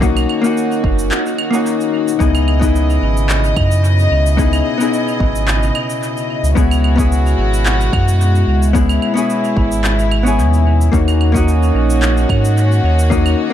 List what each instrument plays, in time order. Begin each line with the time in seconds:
Already playing: sub bass B1, string section D#3 A#3 F#4
0.01 hollow-body jazz guitar A#3 C#4 D#4 F#4, kick, cabasa
0.17 cabasa, claves
0.29 claves
0.41 hollow-body jazz guitar A#3 C#4 D#4, cabasa
0.46 hollow-body jazz guitar F#4
0.57 cabasa
0.72 cabasa
0.84 sub bass F#1, kick
0.99 cabasa
1.11 clap, cabasa
1.26 cabasa
1.38 claves
1.50 hollow-body jazz guitar A#3 C#4 D#4, cabasa
1.55 hollow-body jazz guitar F#4
1.66 cabasa
1.81 cabasa
2.08 cabasa
2.19 sub bass C#2, string section B2 C#3 D#5, hollow-body jazz guitar B3 D#4 E4 G#4, kick, cabasa
2.35 cabasa, claves
2.48 claves
2.59 hollow-body jazz guitar B3 D#4 E4, kick, cabasa
2.64 hollow-body jazz guitar G#4
2.76 cabasa
2.90 cabasa
3.02 sub bass G#1
3.17 cabasa
3.29 clap, cabasa
3.44 cabasa
3.56 sub bass F#2, kick, claves
3.71 cabasa
3.84 cabasa
3.99 cabasa
4.11 sub bass C#2
4.26 cabasa
4.37 hollow-body jazz guitar B3 D#4 E4 G#4, kick, cabasa
4.53 cabasa, claves
4.78 hollow-body jazz guitar B3 D#4 E4, cabasa
4.82 hollow-body jazz guitar G#4
4.94 cabasa
5.08 cabasa
5.20 sub bass G#1, kick
5.35 cabasa
5.48 clap, cabasa
5.63 cabasa
5.75 claves
5.90 cabasa
6.03 cabasa
6.17 cabasa
6.43 sub bass C#2, cabasa
6.55 sub bass C#2, string section G#3 F#4, hollow-body jazz guitar B3 C#4 E4 G#4, kick, cabasa
6.71 cabasa, claves
6.84 claves
6.96 hollow-body jazz guitar B3 C#4 E4, kick, cabasa
7.00 hollow-body jazz guitar G#4
7.12 cabasa
7.26 cabasa
7.38 sub bass G#1
7.54 cabasa
7.66 clap, cabasa
7.81 cabasa
7.93 sub bass F#2, kick, claves
8.08 cabasa
8.21 cabasa
8.35 cabasa
8.47 sub bass C#2
8.62 cabasa
8.73 hollow-body jazz guitar B3 C#4 E4 G#4, string section E4, kick, cabasa
8.89 cabasa, claves
9.02 claves
9.14 hollow-body jazz guitar B3 C#4 E4, cabasa
9.18 hollow-body jazz guitar G#4
9.30 cabasa
9.44 cabasa
9.57 sub bass G#1, kick
9.72 cabasa
9.84 clap, cabasa
9.99 cabasa
10.11 claves
10.23 hollow-body jazz guitar B3 C#4 E4, cabasa
10.28 hollow-body jazz guitar G#4
10.38 sub bass D#2, cabasa
10.54 cabasa
10.81 cabasa
10.92 sub bass D#2, string section D#3 A#3 C#4 F#4, hollow-body jazz guitar A#3 C#4 D#4 F#4, kick, cabasa
11.08 cabasa, claves
11.21 claves
11.32 hollow-body jazz guitar A#3 C#4 D#4, kick, cabasa
11.37 hollow-body jazz guitar F#4
11.48 cabasa
11.63 cabasa
11.74 sub bass A#1
11.90 cabasa
12.02 clap, cabasa
12.17 cabasa
12.29 sub bass G#2, kick, claves
12.45 cabasa
12.58 cabasa
12.72 cabasa
12.84 sub bass D#2
12.99 cabasa
13.10 hollow-body jazz guitar A#3 C#4 D#4 F#4, kick, cabasa
13.26 cabasa, claves